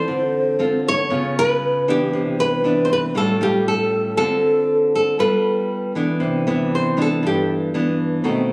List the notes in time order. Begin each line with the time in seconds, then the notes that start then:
Already playing: C4 F4 A4 C5
0.08 D3
0.59 C4 F4 A4
0.87 C#5
1.10 C#3 B3 F4
1.38 B4
1.88 E3 B3 D4 G4
2.13 C3
2.40 B4
2.64 E3 B3 D4
2.84 C5
2.90 B4
3.15 A2 G3 C#4 F4 A4
3.41 G3 C#4 F4 G4
3.67 A4
4.17 D3 C4 F4 A4
4.94 A4
5.19 G3 B3 F4 A4 B4
5.95 E3 B3 D4
6.20 C3
6.47 E3 B3 D4
6.75 C5
6.97 E3 B3 D4
7.02 A4
7.23 G2 G4
7.74 E3 B3 D4
8.24 B2 D#3 A3 C4